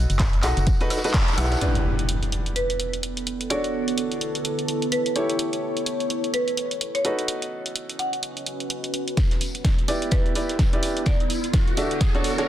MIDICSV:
0, 0, Header, 1, 8, 480
1, 0, Start_track
1, 0, Tempo, 472441
1, 1640, Time_signature, 4, 2, 24, 8
1, 12683, End_track
2, 0, Start_track
2, 0, Title_t, "Marimba"
2, 0, Program_c, 0, 12
2, 439, Note_on_c, 0, 78, 92
2, 919, Note_off_c, 0, 78, 0
2, 2600, Note_on_c, 0, 71, 83
2, 2802, Note_off_c, 0, 71, 0
2, 3558, Note_on_c, 0, 74, 88
2, 3761, Note_off_c, 0, 74, 0
2, 4999, Note_on_c, 0, 71, 84
2, 5296, Note_off_c, 0, 71, 0
2, 6438, Note_on_c, 0, 71, 94
2, 6641, Note_off_c, 0, 71, 0
2, 7059, Note_on_c, 0, 73, 90
2, 7215, Note_off_c, 0, 73, 0
2, 8120, Note_on_c, 0, 78, 86
2, 8600, Note_off_c, 0, 78, 0
2, 10279, Note_on_c, 0, 71, 92
2, 10482, Note_off_c, 0, 71, 0
2, 11239, Note_on_c, 0, 74, 91
2, 11442, Note_off_c, 0, 74, 0
2, 12683, End_track
3, 0, Start_track
3, 0, Title_t, "Upright piano"
3, 0, Program_c, 1, 0
3, 0, Note_on_c, 1, 63, 89
3, 0, Note_on_c, 1, 66, 78
3, 0, Note_on_c, 1, 69, 81
3, 0, Note_on_c, 1, 71, 95
3, 416, Note_off_c, 1, 63, 0
3, 416, Note_off_c, 1, 66, 0
3, 416, Note_off_c, 1, 69, 0
3, 416, Note_off_c, 1, 71, 0
3, 440, Note_on_c, 1, 63, 80
3, 440, Note_on_c, 1, 66, 78
3, 440, Note_on_c, 1, 69, 73
3, 440, Note_on_c, 1, 75, 93
3, 787, Note_off_c, 1, 63, 0
3, 787, Note_off_c, 1, 69, 0
3, 787, Note_off_c, 1, 75, 0
3, 788, Note_off_c, 1, 66, 0
3, 822, Note_on_c, 1, 63, 102
3, 822, Note_on_c, 1, 66, 93
3, 822, Note_on_c, 1, 69, 92
3, 822, Note_on_c, 1, 71, 115
3, 989, Note_off_c, 1, 63, 0
3, 989, Note_off_c, 1, 66, 0
3, 989, Note_off_c, 1, 69, 0
3, 989, Note_off_c, 1, 71, 0
3, 1062, Note_on_c, 1, 63, 102
3, 1062, Note_on_c, 1, 66, 92
3, 1062, Note_on_c, 1, 69, 98
3, 1062, Note_on_c, 1, 71, 108
3, 1153, Note_off_c, 1, 63, 0
3, 1153, Note_off_c, 1, 66, 0
3, 1153, Note_off_c, 1, 69, 0
3, 1153, Note_off_c, 1, 71, 0
3, 1400, Note_on_c, 1, 71, 85
3, 1401, Note_on_c, 1, 64, 92
3, 1401, Note_on_c, 1, 67, 82
3, 1401, Note_on_c, 1, 78, 97
3, 1625, Note_off_c, 1, 64, 0
3, 1625, Note_off_c, 1, 67, 0
3, 1625, Note_off_c, 1, 71, 0
3, 1640, Note_on_c, 1, 62, 73
3, 1640, Note_on_c, 1, 64, 68
3, 1641, Note_on_c, 1, 67, 66
3, 1641, Note_on_c, 1, 71, 76
3, 1880, Note_off_c, 1, 78, 0
3, 3536, Note_off_c, 1, 62, 0
3, 3536, Note_off_c, 1, 64, 0
3, 3536, Note_off_c, 1, 67, 0
3, 3537, Note_off_c, 1, 71, 0
3, 3560, Note_on_c, 1, 62, 75
3, 3560, Note_on_c, 1, 66, 64
3, 3560, Note_on_c, 1, 69, 67
3, 3560, Note_on_c, 1, 73, 78
3, 5216, Note_off_c, 1, 66, 0
3, 5216, Note_off_c, 1, 69, 0
3, 5216, Note_off_c, 1, 73, 0
3, 5217, Note_off_c, 1, 62, 0
3, 5239, Note_on_c, 1, 64, 71
3, 5239, Note_on_c, 1, 67, 68
3, 5239, Note_on_c, 1, 69, 66
3, 5239, Note_on_c, 1, 73, 78
3, 7136, Note_off_c, 1, 64, 0
3, 7136, Note_off_c, 1, 67, 0
3, 7136, Note_off_c, 1, 69, 0
3, 7136, Note_off_c, 1, 73, 0
3, 7160, Note_on_c, 1, 63, 72
3, 7160, Note_on_c, 1, 66, 65
3, 7160, Note_on_c, 1, 69, 65
3, 7160, Note_on_c, 1, 71, 79
3, 9296, Note_off_c, 1, 63, 0
3, 9296, Note_off_c, 1, 66, 0
3, 9296, Note_off_c, 1, 69, 0
3, 9296, Note_off_c, 1, 71, 0
3, 10039, Note_on_c, 1, 71, 68
3, 10039, Note_on_c, 1, 74, 87
3, 10040, Note_on_c, 1, 64, 79
3, 10040, Note_on_c, 1, 67, 67
3, 10256, Note_off_c, 1, 64, 0
3, 10256, Note_off_c, 1, 67, 0
3, 10256, Note_off_c, 1, 71, 0
3, 10256, Note_off_c, 1, 74, 0
3, 10279, Note_on_c, 1, 64, 86
3, 10279, Note_on_c, 1, 67, 75
3, 10279, Note_on_c, 1, 71, 84
3, 10279, Note_on_c, 1, 74, 96
3, 10469, Note_off_c, 1, 64, 0
3, 10469, Note_off_c, 1, 67, 0
3, 10469, Note_off_c, 1, 71, 0
3, 10469, Note_off_c, 1, 74, 0
3, 10519, Note_on_c, 1, 64, 78
3, 10519, Note_on_c, 1, 67, 71
3, 10519, Note_on_c, 1, 71, 70
3, 10519, Note_on_c, 1, 74, 83
3, 10709, Note_off_c, 1, 64, 0
3, 10709, Note_off_c, 1, 67, 0
3, 10709, Note_off_c, 1, 71, 0
3, 10709, Note_off_c, 1, 74, 0
3, 10901, Note_on_c, 1, 67, 77
3, 10902, Note_on_c, 1, 64, 80
3, 10902, Note_on_c, 1, 71, 74
3, 10902, Note_on_c, 1, 74, 88
3, 11228, Note_off_c, 1, 64, 0
3, 11228, Note_off_c, 1, 67, 0
3, 11228, Note_off_c, 1, 71, 0
3, 11228, Note_off_c, 1, 74, 0
3, 11960, Note_on_c, 1, 62, 80
3, 11960, Note_on_c, 1, 66, 73
3, 11960, Note_on_c, 1, 69, 69
3, 11960, Note_on_c, 1, 76, 84
3, 12307, Note_off_c, 1, 62, 0
3, 12307, Note_off_c, 1, 69, 0
3, 12308, Note_off_c, 1, 66, 0
3, 12308, Note_off_c, 1, 76, 0
3, 12341, Note_on_c, 1, 62, 96
3, 12341, Note_on_c, 1, 66, 93
3, 12341, Note_on_c, 1, 73, 103
3, 12342, Note_on_c, 1, 69, 91
3, 12508, Note_off_c, 1, 62, 0
3, 12508, Note_off_c, 1, 73, 0
3, 12509, Note_off_c, 1, 66, 0
3, 12509, Note_off_c, 1, 69, 0
3, 12581, Note_on_c, 1, 62, 96
3, 12581, Note_on_c, 1, 66, 86
3, 12581, Note_on_c, 1, 69, 86
3, 12581, Note_on_c, 1, 73, 110
3, 12672, Note_off_c, 1, 69, 0
3, 12673, Note_off_c, 1, 62, 0
3, 12673, Note_off_c, 1, 66, 0
3, 12673, Note_off_c, 1, 73, 0
3, 12683, End_track
4, 0, Start_track
4, 0, Title_t, "Ambient pad"
4, 0, Program_c, 2, 92
4, 1639, Note_on_c, 2, 59, 73
4, 2048, Note_on_c, 2, 64, 96
4, 2106, Note_on_c, 2, 69, 82
4, 3560, Note_on_c, 2, 50, 94
4, 4324, Note_on_c, 2, 73, 90
4, 5240, Note_off_c, 2, 50, 0
4, 7159, Note_on_c, 2, 61, 83
4, 7160, Note_off_c, 2, 64, 0
4, 7428, Note_on_c, 2, 71, 74
4, 7529, Note_on_c, 2, 75, 88
4, 7672, Note_on_c, 2, 66, 85
4, 8040, Note_off_c, 2, 59, 0
4, 8040, Note_off_c, 2, 69, 0
4, 8042, Note_off_c, 2, 73, 0
4, 9319, Note_off_c, 2, 61, 0
4, 9319, Note_on_c, 2, 59, 76
4, 9320, Note_off_c, 2, 75, 0
4, 9749, Note_on_c, 2, 64, 96
4, 10096, Note_off_c, 2, 66, 0
4, 10096, Note_off_c, 2, 71, 0
4, 10201, Note_on_c, 2, 69, 78
4, 11239, Note_on_c, 2, 50, 85
4, 12003, Note_on_c, 2, 73, 77
4, 12683, Note_off_c, 2, 50, 0
4, 12683, Note_off_c, 2, 59, 0
4, 12683, Note_off_c, 2, 64, 0
4, 12683, Note_off_c, 2, 69, 0
4, 12683, Note_off_c, 2, 73, 0
4, 12683, End_track
5, 0, Start_track
5, 0, Title_t, "FM bass"
5, 0, Program_c, 3, 39
5, 101, Note_on_c, 3, 30, 85
5, 440, Note_on_c, 3, 35, 83
5, 455, Note_off_c, 3, 30, 0
5, 542, Note_off_c, 3, 35, 0
5, 582, Note_on_c, 3, 30, 103
5, 743, Note_off_c, 3, 30, 0
5, 1399, Note_on_c, 3, 35, 87
5, 1585, Note_off_c, 3, 35, 0
5, 12683, End_track
6, 0, Start_track
6, 0, Title_t, "Impact"
6, 0, Program_c, 4, 103
6, 1640, Note_on_c, 4, 60, 67
6, 3560, Note_off_c, 4, 60, 0
6, 12683, End_track
7, 0, Start_track
7, 0, Title_t, "Riser"
7, 0, Program_c, 5, 103
7, 9320, Note_on_c, 5, 60, 76
7, 12683, Note_off_c, 5, 60, 0
7, 12683, End_track
8, 0, Start_track
8, 0, Title_t, "Drums"
8, 99, Note_on_c, 9, 42, 42
8, 100, Note_on_c, 9, 54, 35
8, 195, Note_on_c, 9, 39, 126
8, 197, Note_off_c, 9, 42, 0
8, 197, Note_on_c, 9, 42, 97
8, 198, Note_off_c, 9, 54, 0
8, 198, Note_on_c, 9, 54, 90
8, 199, Note_off_c, 9, 54, 0
8, 199, Note_on_c, 9, 36, 114
8, 199, Note_on_c, 9, 54, 49
8, 202, Note_on_c, 9, 38, 126
8, 297, Note_off_c, 9, 39, 0
8, 299, Note_off_c, 9, 42, 0
8, 300, Note_off_c, 9, 54, 0
8, 301, Note_off_c, 9, 36, 0
8, 304, Note_off_c, 9, 38, 0
8, 338, Note_on_c, 9, 42, 41
8, 339, Note_on_c, 9, 54, 23
8, 435, Note_off_c, 9, 54, 0
8, 435, Note_on_c, 9, 39, 61
8, 435, Note_on_c, 9, 54, 76
8, 437, Note_on_c, 9, 46, 99
8, 437, Note_on_c, 9, 76, 63
8, 438, Note_off_c, 9, 54, 0
8, 438, Note_on_c, 9, 54, 81
8, 440, Note_off_c, 9, 42, 0
8, 536, Note_off_c, 9, 39, 0
8, 538, Note_off_c, 9, 46, 0
8, 538, Note_off_c, 9, 76, 0
8, 540, Note_off_c, 9, 54, 0
8, 579, Note_on_c, 9, 42, 42
8, 580, Note_on_c, 9, 54, 36
8, 677, Note_off_c, 9, 42, 0
8, 677, Note_on_c, 9, 42, 95
8, 680, Note_off_c, 9, 54, 0
8, 680, Note_on_c, 9, 36, 126
8, 680, Note_on_c, 9, 54, 90
8, 779, Note_off_c, 9, 42, 0
8, 781, Note_off_c, 9, 36, 0
8, 781, Note_off_c, 9, 54, 0
8, 819, Note_on_c, 9, 42, 45
8, 820, Note_on_c, 9, 54, 23
8, 915, Note_on_c, 9, 38, 86
8, 918, Note_on_c, 9, 46, 105
8, 918, Note_on_c, 9, 76, 69
8, 920, Note_off_c, 9, 42, 0
8, 920, Note_off_c, 9, 54, 0
8, 920, Note_on_c, 9, 54, 88
8, 924, Note_off_c, 9, 54, 0
8, 924, Note_on_c, 9, 54, 72
8, 986, Note_off_c, 9, 54, 0
8, 986, Note_on_c, 9, 54, 70
8, 988, Note_off_c, 9, 38, 0
8, 988, Note_on_c, 9, 38, 84
8, 1020, Note_off_c, 9, 46, 0
8, 1020, Note_off_c, 9, 76, 0
8, 1060, Note_on_c, 9, 42, 42
8, 1061, Note_off_c, 9, 54, 0
8, 1061, Note_on_c, 9, 54, 36
8, 1062, Note_off_c, 9, 38, 0
8, 1062, Note_on_c, 9, 38, 92
8, 1065, Note_off_c, 9, 54, 0
8, 1065, Note_on_c, 9, 54, 64
8, 1102, Note_off_c, 9, 54, 0
8, 1102, Note_on_c, 9, 54, 63
8, 1117, Note_off_c, 9, 38, 0
8, 1117, Note_on_c, 9, 38, 101
8, 1156, Note_off_c, 9, 38, 0
8, 1156, Note_on_c, 9, 38, 90
8, 1157, Note_on_c, 9, 39, 124
8, 1159, Note_off_c, 9, 42, 0
8, 1159, Note_on_c, 9, 42, 96
8, 1160, Note_off_c, 9, 54, 0
8, 1160, Note_on_c, 9, 36, 111
8, 1160, Note_on_c, 9, 54, 43
8, 1229, Note_off_c, 9, 54, 0
8, 1229, Note_on_c, 9, 54, 69
8, 1231, Note_off_c, 9, 38, 0
8, 1231, Note_on_c, 9, 38, 90
8, 1258, Note_off_c, 9, 39, 0
8, 1261, Note_off_c, 9, 36, 0
8, 1261, Note_off_c, 9, 42, 0
8, 1301, Note_off_c, 9, 54, 0
8, 1301, Note_on_c, 9, 54, 66
8, 1302, Note_on_c, 9, 42, 41
8, 1303, Note_off_c, 9, 54, 0
8, 1303, Note_on_c, 9, 54, 23
8, 1304, Note_off_c, 9, 38, 0
8, 1304, Note_on_c, 9, 38, 95
8, 1351, Note_off_c, 9, 54, 0
8, 1351, Note_on_c, 9, 54, 64
8, 1354, Note_off_c, 9, 38, 0
8, 1354, Note_on_c, 9, 38, 92
8, 1396, Note_off_c, 9, 38, 0
8, 1396, Note_on_c, 9, 38, 95
8, 1399, Note_on_c, 9, 46, 106
8, 1399, Note_on_c, 9, 76, 91
8, 1401, Note_off_c, 9, 54, 0
8, 1401, Note_on_c, 9, 54, 85
8, 1403, Note_off_c, 9, 42, 0
8, 1466, Note_off_c, 9, 38, 0
8, 1466, Note_on_c, 9, 38, 96
8, 1478, Note_off_c, 9, 54, 0
8, 1478, Note_on_c, 9, 54, 69
8, 1501, Note_off_c, 9, 46, 0
8, 1501, Note_off_c, 9, 76, 0
8, 1540, Note_off_c, 9, 38, 0
8, 1540, Note_on_c, 9, 38, 99
8, 1541, Note_on_c, 9, 42, 41
8, 1543, Note_off_c, 9, 54, 0
8, 1543, Note_on_c, 9, 54, 62
8, 1593, Note_off_c, 9, 54, 0
8, 1593, Note_on_c, 9, 54, 68
8, 1595, Note_off_c, 9, 38, 0
8, 1595, Note_on_c, 9, 38, 89
8, 1640, Note_off_c, 9, 42, 0
8, 1640, Note_on_c, 9, 42, 90
8, 1695, Note_off_c, 9, 54, 0
8, 1697, Note_off_c, 9, 38, 0
8, 1741, Note_off_c, 9, 42, 0
8, 1781, Note_on_c, 9, 42, 41
8, 1883, Note_off_c, 9, 42, 0
8, 2022, Note_on_c, 9, 42, 36
8, 2120, Note_off_c, 9, 42, 0
8, 2120, Note_on_c, 9, 42, 90
8, 2222, Note_off_c, 9, 42, 0
8, 2261, Note_on_c, 9, 42, 37
8, 2360, Note_off_c, 9, 42, 0
8, 2360, Note_on_c, 9, 42, 61
8, 2462, Note_off_c, 9, 42, 0
8, 2501, Note_on_c, 9, 42, 35
8, 2600, Note_off_c, 9, 42, 0
8, 2600, Note_on_c, 9, 42, 89
8, 2702, Note_off_c, 9, 42, 0
8, 2742, Note_on_c, 9, 42, 38
8, 2841, Note_off_c, 9, 42, 0
8, 2841, Note_on_c, 9, 42, 64
8, 2942, Note_off_c, 9, 42, 0
8, 2982, Note_on_c, 9, 42, 37
8, 3080, Note_off_c, 9, 42, 0
8, 3080, Note_on_c, 9, 42, 83
8, 3182, Note_off_c, 9, 42, 0
8, 3221, Note_on_c, 9, 42, 40
8, 3320, Note_off_c, 9, 42, 0
8, 3320, Note_on_c, 9, 42, 68
8, 3422, Note_off_c, 9, 42, 0
8, 3461, Note_on_c, 9, 42, 38
8, 3560, Note_off_c, 9, 42, 0
8, 3560, Note_on_c, 9, 42, 87
8, 3661, Note_off_c, 9, 42, 0
8, 3701, Note_on_c, 9, 42, 37
8, 3802, Note_off_c, 9, 42, 0
8, 3940, Note_on_c, 9, 42, 36
8, 4040, Note_off_c, 9, 42, 0
8, 4040, Note_on_c, 9, 42, 86
8, 4141, Note_off_c, 9, 42, 0
8, 4181, Note_on_c, 9, 42, 36
8, 4280, Note_off_c, 9, 42, 0
8, 4280, Note_on_c, 9, 42, 61
8, 4381, Note_off_c, 9, 42, 0
8, 4421, Note_on_c, 9, 42, 36
8, 4520, Note_off_c, 9, 42, 0
8, 4520, Note_on_c, 9, 42, 85
8, 4621, Note_off_c, 9, 42, 0
8, 4660, Note_on_c, 9, 42, 38
8, 4759, Note_off_c, 9, 42, 0
8, 4759, Note_on_c, 9, 42, 61
8, 4861, Note_off_c, 9, 42, 0
8, 4900, Note_on_c, 9, 42, 39
8, 4998, Note_off_c, 9, 42, 0
8, 4998, Note_on_c, 9, 42, 84
8, 5100, Note_off_c, 9, 42, 0
8, 5140, Note_on_c, 9, 42, 37
8, 5239, Note_off_c, 9, 42, 0
8, 5239, Note_on_c, 9, 42, 66
8, 5340, Note_off_c, 9, 42, 0
8, 5380, Note_on_c, 9, 42, 37
8, 5477, Note_off_c, 9, 42, 0
8, 5477, Note_on_c, 9, 42, 83
8, 5579, Note_off_c, 9, 42, 0
8, 5619, Note_on_c, 9, 42, 37
8, 5720, Note_off_c, 9, 42, 0
8, 5859, Note_on_c, 9, 42, 35
8, 5958, Note_off_c, 9, 42, 0
8, 5958, Note_on_c, 9, 42, 83
8, 6059, Note_off_c, 9, 42, 0
8, 6100, Note_on_c, 9, 42, 34
8, 6199, Note_off_c, 9, 42, 0
8, 6199, Note_on_c, 9, 42, 58
8, 6300, Note_off_c, 9, 42, 0
8, 6340, Note_on_c, 9, 42, 34
8, 6439, Note_off_c, 9, 42, 0
8, 6439, Note_on_c, 9, 42, 83
8, 6540, Note_off_c, 9, 42, 0
8, 6580, Note_on_c, 9, 42, 35
8, 6679, Note_off_c, 9, 42, 0
8, 6679, Note_on_c, 9, 42, 62
8, 6781, Note_off_c, 9, 42, 0
8, 6820, Note_on_c, 9, 42, 36
8, 6919, Note_off_c, 9, 42, 0
8, 6919, Note_on_c, 9, 42, 80
8, 7021, Note_off_c, 9, 42, 0
8, 7060, Note_on_c, 9, 42, 36
8, 7159, Note_off_c, 9, 42, 0
8, 7159, Note_on_c, 9, 42, 63
8, 7261, Note_off_c, 9, 42, 0
8, 7301, Note_on_c, 9, 42, 35
8, 7399, Note_off_c, 9, 42, 0
8, 7399, Note_on_c, 9, 42, 85
8, 7501, Note_off_c, 9, 42, 0
8, 7541, Note_on_c, 9, 42, 38
8, 7642, Note_off_c, 9, 42, 0
8, 7780, Note_on_c, 9, 42, 34
8, 7880, Note_off_c, 9, 42, 0
8, 7880, Note_on_c, 9, 42, 83
8, 7981, Note_off_c, 9, 42, 0
8, 8021, Note_on_c, 9, 42, 36
8, 8120, Note_off_c, 9, 42, 0
8, 8120, Note_on_c, 9, 42, 54
8, 8221, Note_off_c, 9, 42, 0
8, 8261, Note_on_c, 9, 42, 36
8, 8360, Note_off_c, 9, 42, 0
8, 8360, Note_on_c, 9, 42, 80
8, 8461, Note_off_c, 9, 42, 0
8, 8502, Note_on_c, 9, 42, 36
8, 8600, Note_off_c, 9, 42, 0
8, 8600, Note_on_c, 9, 42, 61
8, 8702, Note_off_c, 9, 42, 0
8, 8741, Note_on_c, 9, 42, 35
8, 8840, Note_off_c, 9, 42, 0
8, 8840, Note_on_c, 9, 42, 80
8, 8941, Note_off_c, 9, 42, 0
8, 8981, Note_on_c, 9, 42, 34
8, 9080, Note_off_c, 9, 42, 0
8, 9080, Note_on_c, 9, 42, 63
8, 9182, Note_off_c, 9, 42, 0
8, 9221, Note_on_c, 9, 42, 36
8, 9317, Note_on_c, 9, 54, 86
8, 9320, Note_off_c, 9, 42, 0
8, 9320, Note_on_c, 9, 36, 119
8, 9320, Note_on_c, 9, 38, 49
8, 9320, Note_on_c, 9, 42, 92
8, 9419, Note_off_c, 9, 54, 0
8, 9421, Note_off_c, 9, 36, 0
8, 9422, Note_off_c, 9, 38, 0
8, 9422, Note_off_c, 9, 42, 0
8, 9459, Note_on_c, 9, 38, 53
8, 9462, Note_on_c, 9, 42, 39
8, 9557, Note_on_c, 9, 54, 70
8, 9560, Note_on_c, 9, 46, 99
8, 9561, Note_off_c, 9, 38, 0
8, 9563, Note_off_c, 9, 42, 0
8, 9659, Note_off_c, 9, 54, 0
8, 9662, Note_off_c, 9, 46, 0
8, 9701, Note_on_c, 9, 42, 39
8, 9800, Note_off_c, 9, 42, 0
8, 9800, Note_on_c, 9, 36, 108
8, 9800, Note_on_c, 9, 38, 47
8, 9800, Note_on_c, 9, 42, 94
8, 9801, Note_off_c, 9, 38, 0
8, 9801, Note_on_c, 9, 38, 108
8, 9808, Note_on_c, 9, 54, 93
8, 9901, Note_off_c, 9, 36, 0
8, 9902, Note_off_c, 9, 38, 0
8, 9902, Note_off_c, 9, 42, 0
8, 9909, Note_off_c, 9, 54, 0
8, 9941, Note_on_c, 9, 42, 39
8, 10039, Note_on_c, 9, 46, 99
8, 10043, Note_off_c, 9, 42, 0
8, 10043, Note_on_c, 9, 54, 66
8, 10141, Note_off_c, 9, 46, 0
8, 10144, Note_off_c, 9, 54, 0
8, 10181, Note_on_c, 9, 42, 39
8, 10274, Note_on_c, 9, 54, 81
8, 10279, Note_off_c, 9, 42, 0
8, 10279, Note_on_c, 9, 38, 50
8, 10279, Note_on_c, 9, 42, 96
8, 10280, Note_on_c, 9, 36, 119
8, 10375, Note_off_c, 9, 54, 0
8, 10381, Note_off_c, 9, 36, 0
8, 10381, Note_off_c, 9, 38, 0
8, 10381, Note_off_c, 9, 42, 0
8, 10422, Note_on_c, 9, 42, 40
8, 10519, Note_on_c, 9, 54, 63
8, 10520, Note_on_c, 9, 46, 102
8, 10523, Note_off_c, 9, 42, 0
8, 10621, Note_off_c, 9, 54, 0
8, 10622, Note_off_c, 9, 46, 0
8, 10662, Note_on_c, 9, 38, 36
8, 10662, Note_on_c, 9, 42, 40
8, 10758, Note_off_c, 9, 38, 0
8, 10758, Note_on_c, 9, 38, 119
8, 10760, Note_off_c, 9, 38, 0
8, 10760, Note_off_c, 9, 42, 0
8, 10760, Note_on_c, 9, 36, 104
8, 10760, Note_on_c, 9, 38, 49
8, 10760, Note_on_c, 9, 42, 88
8, 10760, Note_on_c, 9, 54, 92
8, 10861, Note_off_c, 9, 36, 0
8, 10862, Note_off_c, 9, 38, 0
8, 10862, Note_off_c, 9, 42, 0
8, 10862, Note_off_c, 9, 54, 0
8, 10901, Note_on_c, 9, 42, 40
8, 11000, Note_on_c, 9, 46, 111
8, 11001, Note_on_c, 9, 54, 69
8, 11003, Note_off_c, 9, 42, 0
8, 11102, Note_off_c, 9, 46, 0
8, 11103, Note_off_c, 9, 54, 0
8, 11142, Note_on_c, 9, 42, 39
8, 11235, Note_on_c, 9, 54, 80
8, 11240, Note_on_c, 9, 36, 123
8, 11241, Note_off_c, 9, 42, 0
8, 11241, Note_on_c, 9, 38, 54
8, 11241, Note_on_c, 9, 42, 89
8, 11336, Note_off_c, 9, 54, 0
8, 11341, Note_off_c, 9, 36, 0
8, 11342, Note_off_c, 9, 38, 0
8, 11342, Note_off_c, 9, 42, 0
8, 11382, Note_on_c, 9, 42, 38
8, 11480, Note_on_c, 9, 46, 103
8, 11484, Note_off_c, 9, 42, 0
8, 11485, Note_on_c, 9, 54, 69
8, 11582, Note_off_c, 9, 46, 0
8, 11586, Note_off_c, 9, 54, 0
8, 11622, Note_on_c, 9, 42, 38
8, 11718, Note_on_c, 9, 54, 85
8, 11720, Note_off_c, 9, 42, 0
8, 11720, Note_on_c, 9, 36, 120
8, 11720, Note_on_c, 9, 38, 53
8, 11720, Note_on_c, 9, 42, 93
8, 11721, Note_off_c, 9, 38, 0
8, 11721, Note_on_c, 9, 38, 112
8, 11820, Note_off_c, 9, 54, 0
8, 11821, Note_off_c, 9, 36, 0
8, 11821, Note_off_c, 9, 42, 0
8, 11823, Note_off_c, 9, 38, 0
8, 11862, Note_on_c, 9, 42, 37
8, 11960, Note_on_c, 9, 46, 98
8, 11961, Note_on_c, 9, 54, 63
8, 11963, Note_off_c, 9, 42, 0
8, 12061, Note_off_c, 9, 46, 0
8, 12062, Note_off_c, 9, 54, 0
8, 12101, Note_on_c, 9, 42, 38
8, 12199, Note_off_c, 9, 42, 0
8, 12199, Note_on_c, 9, 38, 57
8, 12199, Note_on_c, 9, 42, 91
8, 12200, Note_on_c, 9, 36, 122
8, 12200, Note_on_c, 9, 54, 94
8, 12301, Note_off_c, 9, 38, 0
8, 12301, Note_off_c, 9, 42, 0
8, 12301, Note_off_c, 9, 54, 0
8, 12302, Note_off_c, 9, 36, 0
8, 12341, Note_on_c, 9, 42, 40
8, 12439, Note_on_c, 9, 46, 108
8, 12440, Note_on_c, 9, 54, 57
8, 12442, Note_off_c, 9, 42, 0
8, 12541, Note_off_c, 9, 46, 0
8, 12541, Note_off_c, 9, 54, 0
8, 12582, Note_on_c, 9, 38, 53
8, 12582, Note_on_c, 9, 42, 40
8, 12683, Note_off_c, 9, 38, 0
8, 12683, Note_off_c, 9, 42, 0
8, 12683, End_track
0, 0, End_of_file